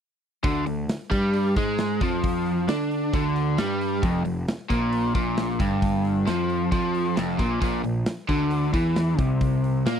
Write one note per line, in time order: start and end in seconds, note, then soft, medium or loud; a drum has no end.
0.44 0.65 D2 medium
0.44 0.65 D3 loud
0.44 kick loud
0.44 open hi-hat medium
0.66 0.88 D2 medium
0.66 0.85 D3 medium
0.66 open hi-hat medium
0.89 snare medium
0.89 open hi-hat medium
1.11 1.53 G2 medium
1.11 1.55 G3 loud
1.11 kick medium
1.11 open hi-hat medium
1.33 open hi-hat medium
1.56 1.98 G#2 medium
1.56 2.01 G#3 medium
1.56 kick loud
1.56 open hi-hat medium
1.78 snare medium
1.78 open hi-hat medium
2.01 2.65 F2 medium
2.01 2.68 F3 loud
2.01 kick loud
2.01 open hi-hat medium
2.24 kick loud
2.24 open hi-hat medium
2.46 open hi-hat medium
2.68 3.10 D3 medium
2.68 3.13 D4 loud
2.68 snare loud
2.68 open hi-hat medium
2.91 open hi-hat soft
3.13 3.55 D2 medium
3.13 3.58 D3 loud
3.13 kick loud
3.13 open hi-hat medium
3.36 open hi-hat medium
3.58 4.00 G2 loud
3.58 4.03 G3 loud
3.58 snare loud
3.58 open hi-hat medium
3.81 open hi-hat medium
4.02 4.24 F1 medium
4.02 4.24 F2 loud
4.02 kick loud
4.02 open hi-hat medium
4.25 4.47 F1 medium
4.25 4.43 F2 medium
4.25 open hi-hat medium
4.48 snare loud
4.48 open hi-hat medium
4.70 5.12 A#1 medium
4.70 5.14 A#2 loud
4.70 kick medium
4.70 open hi-hat soft
4.93 open hi-hat medium
5.15 5.57 A#1 medium
5.15 5.59 A#2 medium
5.15 kick loud
5.15 open hi-hat medium
5.37 snare loud
5.37 open hi-hat medium
5.60 6.23 G1 medium
5.60 6.27 G2 medium
5.60 kick loud
5.60 open hi-hat medium
5.82 kick loud
5.82 open hi-hat medium
6.05 open hi-hat medium
6.26 6.70 F2 medium
6.26 6.71 F3 loud
6.26 snare medium
6.26 open hi-hat medium
6.50 open hi-hat soft
6.72 7.14 F2 medium
6.72 7.16 F3 medium
6.72 kick loud
6.72 open hi-hat medium
6.95 open hi-hat medium
7.16 7.38 F1 medium
7.16 7.38 F2 medium
7.16 snare loud
7.16 open hi-hat medium
7.39 7.60 A#1 medium
7.39 7.60 A#2 medium
7.39 kick loud
7.39 open hi-hat medium
7.61 7.83 A#1 medium
7.61 7.83 A#2 medium
7.61 kick loud
7.61 open hi-hat medium
7.84 8.05 A#1 medium
7.84 8.02 A#2 medium
7.84 open hi-hat medium
8.06 snare loud
8.06 open hi-hat medium
8.29 8.71 D2 medium
8.29 8.73 D3 loud
8.29 kick medium
8.29 open hi-hat soft
8.51 open hi-hat medium
8.73 9.16 E2 medium
8.73 9.18 E3 medium
8.73 kick loud
8.73 open hi-hat medium
8.96 snare loud
8.96 open hi-hat medium
9.18 9.82 C2 medium
9.18 9.85 C3 loud
9.18 kick loud
9.18 open hi-hat medium
9.41 kick loud
9.41 open hi-hat medium
9.64 open hi-hat medium
9.86 10.00 A#2 medium
9.86 10.00 A#3 loud
9.86 snare loud
9.86 open hi-hat medium